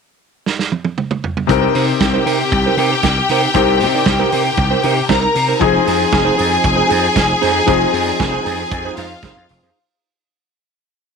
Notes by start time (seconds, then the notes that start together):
0.46 snare
0.59 snare
0.72 high tom
0.85 high tom
0.98 mid tom
1.11 mid tom
1.24 floor tom
1.37 floor tom
1.47 C2 C3 C4 D#4 G4 A#4 G5, muted clean electric guitar stroke, kick, closed hi-hat
1.62 D#4 A#4 C5
1.75 C3 D#4 A#4 C5, open hi-hat
1.88 muted clean electric guitar stroke
2.00 C2, muted clean electric guitar stroke, kick, snare, closed hi-hat
2.14 D#4 A#4 C5
2.26 C3 D#4 A#4 C5, open hi-hat
2.40 muted clean electric guitar stroke
2.52 C2, muted clean electric guitar stroke, kick, closed hi-hat
2.66 D#4 A#4 C5
2.77 C3 D#4 A#4 C5, open hi-hat
2.92 muted clean electric guitar stroke
3.03 C2, kick, snare, closed hi-hat
3.18 muted clean electric guitar stroke
3.29 C3 D#4 A#4 C5, open hi-hat
3.43 muted clean electric guitar stroke
3.54 C2 C3 C4 D#4 G4 A#4 C5, kick, closed hi-hat
3.80 C3, muted clean electric guitar stroke, open hi-hat
3.94 D#4 A#4 D5
4.05 C2, muted clean electric guitar stroke, kick, snare, closed hi-hat
4.19 D#4 A#4 C5
4.32 C3 D#4 A#4 C5, open hi-hat
4.45 muted clean electric guitar stroke
4.57 C2, muted clean electric guitar stroke, kick, closed hi-hat
4.71 D#4 A#4 C5
4.83 C3 D#4 A#4 C5, open hi-hat
4.96 muted clean electric guitar stroke
5.09 C2 D#4 A#4 C5 A#5, kick, snare, closed hi-hat
5.22 muted clean electric guitar stroke
5.35 C3, muted clean electric guitar stroke, open hi-hat
5.48 D#4 A#4 C5
5.59 F1 F3 C4 D#4 G#4 G#5, muted clean electric guitar stroke, kick, closed hi-hat
5.73 D#4 G#4 C5
5.86 F2 D#4 G#4 C5, open hi-hat
6.00 muted clean electric guitar stroke
6.12 F1, muted clean electric guitar stroke, kick, snare, closed hi-hat
6.25 D#4 G#4 C5
6.38 F2 D#4 G#4 C5, open hi-hat
6.50 muted clean electric guitar stroke
6.63 F1, muted clean electric guitar stroke, kick, closed hi-hat
6.76 D#4 G#4 C5
6.89 F2 D#4 G#4 C5, open hi-hat
7.02 muted clean electric guitar stroke
7.16 F1, kick, snare, closed hi-hat
7.29 muted clean electric guitar stroke
7.42 F2 D#4 G#4 C5, snare, open hi-hat
7.54 muted clean electric guitar stroke
7.66 F1 F3 C4 D#4 G#4 C5, kick, closed hi-hat
7.93 F2, muted clean electric guitar stroke, open hi-hat
8.05 D#4 G#4 D5
8.19 F1, muted clean electric guitar stroke, kick, snare, closed hi-hat
8.32 D#4 G#4 C5
8.45 F2 D#4 G#4 C5, open hi-hat
8.58 muted clean electric guitar stroke
8.71 F2, muted clean electric guitar stroke, kick, closed hi-hat
8.85 D#4 G#4 C5
8.97 F2 D#4 F4 G#4 C5 F5, open hi-hat
9.12 muted clean electric guitar stroke
9.22 F1 D#4 G#4 C5, kick, snare, closed hi-hat
9.37 F2, muted clean electric guitar stroke
9.49 F1, muted clean electric guitar stroke, open hi-hat
9.62 F2 D#4 G#4 C5